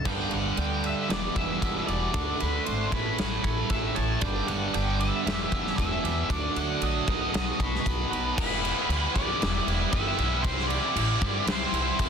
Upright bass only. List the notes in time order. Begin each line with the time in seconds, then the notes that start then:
0.06 G1
0.31 G1
0.58 D2
1.09 E1
1.36 E1
1.62 E1
1.88 E1
2.14 D2
2.42 D2
2.68 G#1
2.93 A1
3.19 A1
3.44 A1
3.70 A1
3.97 A1
4.22 G1
4.50 G1
4.75 G1
5.26 E1
5.52 E1
5.79 E1
6.04 E2
6.30 D2
6.56 D2
6.81 A#1
7.08 B1
7.34 B1
7.60 B1
7.86 B1
8.11 B1
8.38 E1
8.89 D2
9.15 B1
9.42 E1
9.67 E1
9.93 G1
10.18 B1
10.44 C2
10.96 A1
11.22 G2
11.47 C2
11.72 C2
11.99 E2